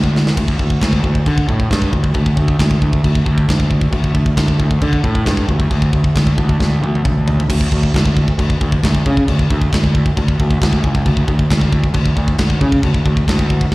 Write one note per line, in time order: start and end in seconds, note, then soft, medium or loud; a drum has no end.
0.00 0.28 D2 medium
0.00 kick medium
0.16 snare medium
0.27 snare loud
0.37 0.55 D2 medium
0.37 kick medium
0.37 crash medium
0.37 china medium
0.48 kick medium
0.59 0.77 D2 medium
0.59 kick medium
0.70 kick medium
0.81 0.99 D2 medium
0.81 kick medium
0.81 snare loud
0.81 china medium
0.93 kick medium
1.04 1.22 D2 medium
1.04 kick medium
1.15 kick medium
1.26 1.44 D3 medium
1.26 kick medium
1.26 china medium
1.38 kick medium
1.48 1.66 A2 medium
1.48 kick medium
1.60 kick medium
1.71 1.89 G2 medium
1.71 kick medium
1.71 snare loud
1.71 china medium
1.82 kick medium
1.93 2.11 D2 medium
1.93 kick medium
2.04 kick medium
2.14 2.33 D2 loud
2.14 kick medium
2.14 china medium
2.26 kick medium
2.37 2.55 D2 medium
2.37 kick medium
2.48 kick medium
2.59 2.77 D2 loud
2.59 kick loud
2.59 snare loud
2.59 china medium
2.71 kick medium
2.82 3.00 D2 medium
2.82 kick medium
2.93 kick medium
3.04 3.22 D2 medium
3.04 kick medium
3.04 china medium
3.15 kick medium
3.26 3.44 D2 medium
3.26 kick medium
3.38 kick medium
3.48 3.85 D2 medium
3.48 kick loud
3.48 snare loud
3.48 china medium
3.60 kick medium
3.71 kick medium
3.81 kick loud
3.92 4.11 D2 loud
3.92 kick medium
3.92 china medium
4.04 kick medium
4.15 4.33 D2 medium
4.15 kick medium
4.26 kick medium
4.37 4.55 D2 medium
4.37 kick medium
4.37 snare loud
4.37 china medium
4.48 kick medium
4.59 4.77 D2 medium
4.59 kick medium
4.71 kick medium
4.82 5.00 D3 medium
4.82 kick medium
4.82 china medium
4.93 kick medium
5.04 5.22 A2 medium
5.04 kick medium
5.15 kick medium
5.26 5.44 G2 medium
5.26 kick loud
5.26 snare loud
5.26 china medium
5.37 kick medium
5.48 5.67 D2 medium
5.48 kick medium
5.60 kick loud
5.70 5.89 D2 loud
5.70 kick medium
5.70 china medium
5.82 kick medium
5.93 6.11 D2 medium
5.93 kick medium
6.04 kick medium
6.15 6.33 D2 medium
6.15 kick loud
6.15 snare loud
6.15 china medium
6.27 kick medium
6.38 6.56 D2 loud
6.38 kick medium
6.49 kick medium
6.60 6.78 D2 loud
6.60 kick medium
6.60 snare medium
6.82 7.00 D2 medium
6.82 high tom medium
6.95 high tom medium
7.05 7.41 D2 medium
7.05 kick loud
7.05 mid tom loud
7.28 floor tom loud
7.40 floor tom loud
7.49 7.66 D2 loud
7.49 kick medium
7.49 crash loud
7.49 china medium
7.61 kick medium
7.72 7.88 D2 loud
7.72 kick medium
7.83 kick medium
7.94 8.27 D2 medium
7.94 kick medium
7.94 snare loud
7.94 china medium
8.06 kick medium
8.17 kick medium
8.28 kick medium
8.39 8.55 D2 loud
8.39 kick medium
8.39 china medium
8.50 kick medium
8.61 8.77 D2 medium
8.61 kick medium
8.72 kick medium
8.83 9.00 D2 loud
8.83 kick loud
8.83 snare loud
8.83 china medium
8.95 kick medium
9.06 9.22 C#3 medium
9.06 kick medium
9.17 kick medium
9.28 9.45 D2 loud
9.28 kick medium
9.28 china medium
9.39 kick medium
9.50 9.67 D2 loud
9.50 kick loud
9.62 kick medium
9.73 10.06 D2 medium
9.73 kick loud
9.73 snare loud
9.73 china medium
9.84 kick medium
9.95 kick medium
10.06 kick medium
10.17 10.34 D2 medium
10.17 kick medium
10.17 china medium
10.28 kick medium
10.40 10.56 D2 medium
10.40 kick medium
10.51 kick medium
10.62 10.78 D2 loud
10.62 kick loud
10.62 snare loud
10.62 china medium
10.73 kick medium
10.84 11.00 C#2 loud
10.84 kick medium
10.95 kick loud
11.06 11.22 D2 loud
11.06 kick medium
11.06 china medium
11.17 kick medium
11.28 11.44 D2 medium
11.28 kick medium
11.39 kick medium
11.51 11.84 D2 medium
11.51 kick medium
11.51 snare loud
11.51 china medium
11.61 kick medium
11.73 kick medium
11.84 kick medium
11.94 12.11 D2 medium
11.94 kick medium
11.94 china medium
12.06 kick medium
12.17 12.33 D2 loud
12.17 kick medium
12.28 kick medium
12.38 12.55 D2 medium
12.38 kick medium
12.38 snare loud
12.38 china medium
12.50 kick medium
12.61 12.78 C#3 loud
12.61 kick medium
12.72 kick medium
12.83 13.00 D2 loud
12.83 kick medium
12.83 china medium
12.94 kick medium
13.06 13.22 D2 loud
13.06 kick medium
13.17 kick medium
13.28 13.61 D2 medium
13.28 kick medium
13.28 snare loud
13.28 china medium
13.39 kick medium
13.50 kick medium
13.61 kick medium